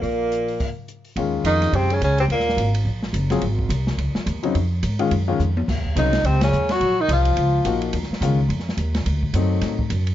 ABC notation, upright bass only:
X:1
M:4/4
L:1/8
Q:"Swing" 1/4=213
K:Ebmix
V:1 name="Upright bass" clef=bass
B,,,4 z4 | [K:Ebdor] E,,2 F,,2 G,,2 D,,2 | E,,2 A,,,2 B,,,2 G,,,2 | A,,,2 C,,2 D,, z E,,2 |
F,,2 A,,2 G,,2 F,,2 | E,,2 C,,2 D,,2 E,,2 | B,,,2 C,,2 D,,2 B,,,2 | E,, z D,,2 F,,2 E,,2 |
=D,,2 ^F,,2 =A,,2 F,,2 |]